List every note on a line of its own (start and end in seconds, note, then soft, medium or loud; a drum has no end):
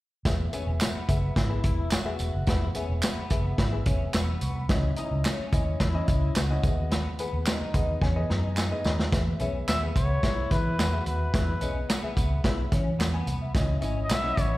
0.25 0.46 E1 loud
0.25 0.44 B3 medium
0.25 0.44 G#4 medium
0.25 0.44 E5 medium
0.25 kick loud
0.25 snare loud
0.25 closed hi-hat medium
0.25 tambourine medium
0.53 0.91 B3 medium
0.53 0.70 C#4 medium
0.53 0.91 G#4 medium
0.53 0.91 E5 medium
0.53 closed hi-hat medium
0.53 tambourine soft
0.67 0.77 E1 medium
0.81 1.33 B3 medium
0.81 snare loud
0.81 clap loud
0.81 closed hi-hat medium
0.81 tambourine medium
0.95 muted fingered electric bass stroke soft
1.08 1.29 F#1 medium
1.08 1.37 B3 medium
1.08 1.37 G#4 medium
1.08 1.37 E5 medium
1.08 kick medium
1.08 closed hi-hat medium
1.08 tambourine soft
1.36 1.57 G#1 loud
1.36 1.89 E4 medium
1.36 kick medium
1.36 snare loud
1.36 closed hi-hat medium
1.36 tambourine soft
1.50 1.88 B3 medium
1.50 1.88 G#4 medium
1.50 1.88 E5 medium
1.63 1.95 E1 medium
1.63 kick medium
1.63 closed hi-hat medium
1.91 2.44 F#4 medium
1.91 snare loud
1.91 clap medium
1.91 closed hi-hat medium
1.91 tambourine medium
2.05 2.34 B3 medium
2.05 2.34 G#4 medium
2.05 2.34 E5 medium
2.19 2.30 E1 medium
2.19 closed hi-hat medium
2.19 tambourine soft
2.34 2.44 F#1 medium
2.47 2.68 E1 loud
2.47 2.66 B3 medium
2.47 2.64 E4 medium
2.47 2.66 G#4 medium
2.47 2.66 F#5 medium
2.47 kick loud
2.47 snare loud
2.47 closed hi-hat medium
2.47 tambourine medium
2.75 3.13 B3 medium
2.75 2.92 C#4 medium
2.75 3.13 G#4 medium
2.75 3.13 E5 medium
2.75 closed hi-hat medium
2.75 tambourine soft
2.89 3.00 E1 medium
3.02 3.56 B3 medium
3.02 snare loud
3.02 clap loud
3.02 closed hi-hat loud
3.02 tambourine loud
3.17 muted fingered electric bass stroke soft
3.30 3.52 F#1 loud
3.30 3.59 B3 medium
3.30 3.59 G#4 medium
3.30 3.59 E5 medium
3.30 kick medium
3.30 closed hi-hat medium
3.30 tambourine medium
3.58 3.79 G#1 loud
3.58 3.76 E4 medium
3.58 kick medium
3.58 snare medium
3.58 closed hi-hat medium
3.72 4.10 B3 medium
3.72 4.10 G#4 medium
3.72 4.10 E5 medium
3.86 4.07 E1 medium
3.86 4.03 C#4 medium
3.86 kick medium
3.86 closed hi-hat medium
3.86 tambourine soft
4.13 4.35 E1 loud
4.13 4.66 B3 medium
4.13 4.41 E6 medium
4.13 snare loud
4.13 clap medium
4.13 closed hi-hat medium
4.13 tambourine medium
4.41 4.62 C2 loud
4.41 4.55 C#6 medium
4.41 closed hi-hat medium
4.41 tambourine medium
4.56 4.82 B5 medium
4.69 4.90 C#2 medium
4.69 4.89 C#4 medium
4.69 4.89 E4 medium
4.69 4.89 D#5 medium
4.69 kick loud
4.69 snare loud
4.69 closed hi-hat medium
4.69 tambourine medium
4.96 5.35 C#4 medium
4.96 5.14 D#4 medium
4.96 5.35 E4 medium
4.96 5.35 D#5 medium
4.96 closed hi-hat medium
4.96 tambourine soft
5.11 5.21 C#2 medium
5.25 5.77 C#4 medium
5.25 snare loud
5.25 clap loud
5.25 closed hi-hat medium
5.25 tambourine loud
5.39 muted fingered electric bass stroke soft
5.52 5.73 D#2 medium
5.52 5.81 C#4 medium
5.52 5.81 E4 medium
5.52 5.81 D#5 medium
5.52 kick medium
5.52 closed hi-hat medium
5.52 tambourine medium
5.80 6.01 E2 medium
5.80 6.32 E4 medium
5.80 kick medium
5.80 snare loud
5.80 closed hi-hat medium
5.94 6.32 C#4 medium
5.94 6.32 E4 medium
5.94 6.32 D#5 medium
6.08 6.29 C#2 medium
6.08 kick loud
6.08 closed hi-hat medium
6.08 tambourine soft
6.36 6.56 C#2 medium
6.36 6.88 F#4 medium
6.36 snare loud
6.36 clap medium
6.36 closed hi-hat medium
6.36 tambourine medium
6.50 6.64 C#4 medium
6.50 6.64 E4 medium
6.50 6.63 D#5 medium
6.63 7.05 D#2 medium
6.63 7.08 B3 medium
6.63 7.08 G#4 medium
6.63 7.08 D#5 medium
6.63 kick medium
6.63 closed hi-hat medium
6.63 tambourine soft
6.91 7.08 B3 medium
6.91 snare medium
6.91 closed hi-hat medium
6.91 tambourine medium
7.19 7.36 B3 medium
7.19 7.57 B3 medium
7.19 7.57 G#4 medium
7.19 7.57 B4 medium
7.19 closed hi-hat medium
7.19 tambourine soft
7.33 7.43 D#2 loud
7.46 7.99 D#4 medium
7.46 snare loud
7.46 clap loud
7.46 closed hi-hat medium
7.46 tambourine loud
7.61 muted fingered electric bass stroke soft
7.74 7.95 D#2 medium
7.74 8.02 B3 medium
7.74 8.02 G#4 medium
7.74 8.03 D#5 medium
7.74 8.00 F#5 medium
7.74 kick medium
7.74 closed hi-hat medium
7.74 tambourine medium
8.01 8.22 E2 medium
8.01 8.19 C#4 medium
8.01 8.53 G#5 medium
8.01 kick medium
8.01 snare soft
8.16 8.53 B3 medium
8.16 8.53 G#4 medium
8.16 8.53 D#5 medium
8.30 8.71 F#2 medium
8.30 8.47 D#4 medium
8.30 snare medium
8.57 9.09 D#4 medium
8.57 8.83 G#5 medium
8.57 snare medium
8.57 clap medium
8.57 tambourine medium
8.71 8.99 B3 medium
8.71 8.99 G#4 medium
8.71 8.99 D#5 medium
8.85 9.05 D#2 medium
8.85 9.11 B5 medium
8.85 snare medium
8.85 tambourine soft
8.99 snare medium
9.12 9.33 E2 medium
9.12 9.31 B3 medium
9.12 9.32 G#4 medium
9.12 9.32 E5 medium
9.12 kick loud
9.12 snare loud
9.12 closed hi-hat medium
9.12 tambourine medium
9.39 9.61 B1 medium
9.39 9.69 B3 medium
9.39 9.57 C#4 medium
9.39 9.69 G#4 medium
9.39 9.69 E5 medium
9.39 closed hi-hat medium
9.39 tambourine soft
9.68 9.89 D#2 medium
9.68 10.20 B3 medium
9.68 9.81 E5 loud
9.68 snare loud
9.68 clap medium
9.68 closed hi-hat medium
9.68 tambourine loud
9.82 10.10 B3 medium
9.82 10.10 G#4 medium
9.82 10.10 E5 medium
9.96 10.16 C#2 medium
9.96 10.53 C#5 medium
9.96 kick medium
9.96 closed hi-hat medium
9.96 tambourine medium
10.23 10.44 B1 medium
10.23 10.42 B3 medium
10.23 10.75 E4 medium
10.23 10.42 G#4 medium
10.23 10.42 E5 medium
10.23 kick medium
10.23 snare medium
10.23 closed hi-hat medium
10.23 tambourine soft
10.51 10.72 E3 medium
10.51 10.79 B3 medium
10.51 10.79 G#4 medium
10.51 11.06 B4 medium
10.51 10.80 E5 medium
10.51 kick medium
10.51 snare soft
10.51 closed hi-hat medium
10.51 tambourine soft
10.78 10.99 E2 medium
10.78 11.31 F#4 medium
10.78 snare loud
10.78 clap medium
10.78 closed hi-hat medium
10.78 tambourine medium
10.93 11.21 B3 medium
10.93 11.21 G#4 medium
10.93 11.21 E5 medium
11.06 11.27 D#2 medium
11.06 12.13 B4 medium
11.06 closed hi-hat medium
11.06 tambourine soft
11.34 11.54 E2 medium
11.34 11.53 B3 medium
11.34 11.51 E4 medium
11.34 11.53 G#4 medium
11.34 11.53 E5 medium
11.34 kick loud
11.34 snare medium
11.34 closed hi-hat medium
11.34 tambourine medium
11.61 11.82 B1 medium
11.61 11.90 B3 medium
11.61 11.78 C#4 medium
11.61 11.90 G#4 medium
11.61 11.90 D#5 medium
11.61 closed hi-hat medium
11.61 tambourine soft
11.89 12.41 B3 medium
11.89 snare loud
11.89 clap loud
11.89 closed hi-hat medium
11.89 tambourine loud
12.03 12.31 B3 medium
12.03 12.31 G#4 medium
12.03 12.31 E5 medium
12.03 muted fingered electric bass stroke soft
12.17 12.37 C#2 medium
12.17 kick medium
12.17 closed hi-hat medium
12.17 tambourine soft
12.44 12.65 B1 medium
12.44 12.63 B3 medium
12.44 12.61 E4 medium
12.44 12.63 G#4 medium
12.44 12.63 E5 medium
12.44 kick medium
12.44 snare loud
12.44 closed hi-hat medium
12.72 12.93 E3 medium
12.72 12.89 C#4 medium
12.72 kick medium
12.72 snare soft
12.72 closed hi-hat medium
12.99 13.20 E2 medium
12.99 13.51 B3 medium
12.99 snare loud
12.99 clap medium
12.99 closed hi-hat medium
12.99 tambourine medium
13.14 13.27 G#5 medium
13.26 13.47 C2 medium
13.26 13.40 F#5 medium
13.26 closed hi-hat medium
13.26 tambourine soft
13.42 13.68 E5 medium
13.55 13.75 C#2 loud
13.55 13.73 C#4 medium
13.55 13.74 E4 medium
13.55 13.74 D#5 loud
13.55 kick loud
13.55 snare medium
13.55 closed hi-hat medium
13.55 tambourine medium
13.81 14.03 G#1 medium
13.81 13.99 C#4 medium
13.81 14.10 C#4 medium
13.81 14.10 E4 medium
13.81 14.10 D#5 medium
13.81 closed hi-hat medium
13.81 tambourine soft
14.04 14.14 D#5 medium
14.09 14.30 B1 medium
14.09 14.58 B3 medium
14.09 14.42 E5 loud
14.09 snare loud
14.09 clap medium
14.09 closed hi-hat medium
14.09 tambourine loud
14.23 14.52 C#4 medium
14.23 14.52 E4 medium
14.23 14.52 D#5 medium
14.37 14.58 A1 medium
14.37 14.58 C#5 medium
14.37 kick medium
14.37 closed hi-hat medium
14.37 tambourine medium